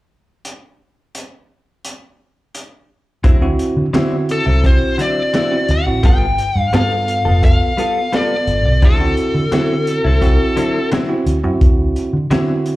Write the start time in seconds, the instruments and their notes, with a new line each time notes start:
0.45 closed hi-hat
1.15 closed hi-hat
1.85 closed hi-hat
2.55 closed hi-hat
3.24 fingered electric bass D2, clean electric guitar D3 F#3 C4 E4, kick, closed hi-hat
3.41 tine electric piano C4 E4 F#4
3.59 closed hi-hat
3.77 fingered electric bass D3
3.93 clean electric guitar D3 F#3 C4 E4, fingered electric bass D3, tine electric piano C4 E4 F#4, snare, closed hi-hat
4.29 lead electric guitar A4, closed hi-hat
4.46 fingered electric bass C2, clean electric guitar F#3 C4 E4
4.64 tine electric piano C4 E4 F#4, lead electric guitar C5, kick, closed hi-hat
4.98 clean electric guitar D3 F#3 C4 E4, lead electric guitar D5, closed hi-hat
5.33 clean electric guitar D3 F#3 C4 E4, snare, closed hi-hat
5.51 tine electric piano C4 E4 F#4
5.68 fingered electric bass D2, lead electric guitar F#5, closed hi-hat
5.86 fingered electric bass A1, tine electric piano C4 E4 F#4
6.03 fingered electric bass G1, clean electric guitar G3 B3 F4 A4, lead electric guitar G5, kick, closed hi-hat
6.38 closed hi-hat
6.55 fingered electric bass G2, lead electric guitar F5
6.73 fingered electric bass G2, clean electric guitar G3 B3 F4 A4, tine electric piano B3 F4 A4, lead electric guitar F5, snare, closed hi-hat
7.08 closed hi-hat
7.25 fingered electric bass F1, clean electric guitar B3 F4 A4
7.43 tine electric piano B3 F4 A4, lead electric guitar F5, kick, closed hi-hat
7.77 clean electric guitar G3 B3 F4 A4, tine electric piano B3 F4 A4, closed hi-hat
8.12 clean electric guitar G3 B3 F4 A4, tine electric piano B3 F4 A4, lead electric guitar D5, snare, closed hi-hat
8.47 fingered electric bass G1, closed hi-hat
8.65 fingered electric bass B1
8.82 fingered electric bass D2, clean electric guitar D3 F#3 C4 E4, lead electric guitar A4, kick, closed hi-hat
9.00 tine electric piano C4 E4 F#4
9.17 closed hi-hat
9.34 fingered electric bass D3
9.52 clean electric guitar D3 F#3 C4 E4, fingered electric bass D3, tine electric piano C4 E4 F#4, snare, closed hi-hat
9.87 closed hi-hat
10.04 fingered electric bass C2, clean electric guitar F#3 C4 E4
10.21 tine electric piano C4 E4 F#4, kick, closed hi-hat
10.56 clean electric guitar D3 F#3 C4 E4, closed hi-hat
10.91 clean electric guitar D3 F#3 C4 E4, snare, closed hi-hat
11.09 tine electric piano C4 E4 F#4
11.26 fingered electric bass D2, closed hi-hat
11.44 fingered electric bass F#2, tine electric piano C4 E4 F#4
11.61 fingered electric bass D2, kick, closed hi-hat
11.96 closed hi-hat
12.13 fingered electric bass D3
12.30 fingered electric bass D3, clean electric guitar D3 F#3 C4 E4, tine electric piano C4 E4 F#4, snare, closed hi-hat
12.66 closed hi-hat